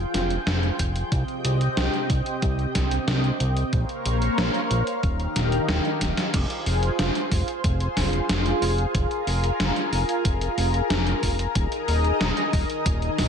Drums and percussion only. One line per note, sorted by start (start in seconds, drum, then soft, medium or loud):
0.14 snare medium
0.14 closed hi-hat medium
0.30 closed hi-hat soft
0.47 snare loud
0.47 closed hi-hat soft
0.63 closed hi-hat soft
0.79 kick medium
0.79 closed hi-hat medium
0.96 closed hi-hat soft
1.12 kick loud
1.12 closed hi-hat soft
1.28 closed hi-hat soft
1.45 closed hi-hat medium
1.61 closed hi-hat soft
1.77 snare loud
1.77 closed hi-hat medium
1.94 closed hi-hat soft
2.10 kick loud
2.10 closed hi-hat medium
2.26 closed hi-hat soft
2.42 kick loud
2.42 closed hi-hat soft
2.59 closed hi-hat soft
2.75 kick medium
2.75 snare medium
2.75 closed hi-hat medium
2.91 closed hi-hat soft
3.08 snare loud
3.08 closed hi-hat soft
3.24 closed hi-hat soft
3.40 closed hi-hat medium
3.57 closed hi-hat soft
3.73 kick loud
3.73 closed hi-hat medium
3.89 closed hi-hat soft
4.06 closed hi-hat medium
4.22 closed hi-hat medium
4.38 snare loud
4.38 closed hi-hat medium
4.54 closed hi-hat soft
4.71 closed hi-hat medium
4.87 closed hi-hat medium
5.03 kick loud
5.03 closed hi-hat soft
5.20 closed hi-hat soft
5.36 snare medium
5.36 closed hi-hat loud
5.52 closed hi-hat soft
5.69 snare loud
5.69 closed hi-hat medium
5.85 closed hi-hat soft
6.01 kick medium
6.01 snare medium
6.01 closed hi-hat loud
6.17 snare medium
6.17 closed hi-hat soft
6.34 kick loud
6.34 closed hi-hat medium
6.34 crash loud
6.50 closed hi-hat soft
6.66 open hi-hat medium
6.83 closed hi-hat soft
6.99 snare loud
6.99 closed hi-hat loud
7.15 closed hi-hat soft
7.32 kick loud
7.32 open hi-hat medium
7.48 closed hi-hat soft
7.64 kick loud
7.64 closed hi-hat medium
7.80 closed hi-hat soft
7.97 kick medium
7.97 snare medium
7.97 open hi-hat medium
8.13 closed hi-hat soft
8.29 snare loud
8.29 closed hi-hat loud
8.46 closed hi-hat soft
8.62 open hi-hat medium
8.78 closed hi-hat soft
8.95 kick loud
8.95 closed hi-hat medium
9.11 closed hi-hat soft
9.27 open hi-hat medium
9.44 closed hi-hat soft
9.60 snare loud
9.60 closed hi-hat loud
9.76 closed hi-hat soft
9.93 open hi-hat medium
10.09 closed hi-hat soft
10.25 kick loud
10.25 closed hi-hat medium
10.41 closed hi-hat soft
10.58 open hi-hat medium
10.74 closed hi-hat soft
10.90 snare loud
10.90 closed hi-hat loud
11.07 closed hi-hat soft
11.23 kick medium
11.23 open hi-hat medium
11.39 closed hi-hat soft
11.55 kick loud
11.55 closed hi-hat medium
11.72 closed hi-hat soft
11.88 open hi-hat medium
12.04 closed hi-hat soft
12.21 snare loud
12.21 closed hi-hat loud
12.37 closed hi-hat soft
12.53 kick loud
12.53 open hi-hat medium
12.70 closed hi-hat soft
12.86 kick loud
12.86 closed hi-hat medium
13.02 closed hi-hat soft
13.18 kick medium
13.18 snare medium
13.18 open hi-hat medium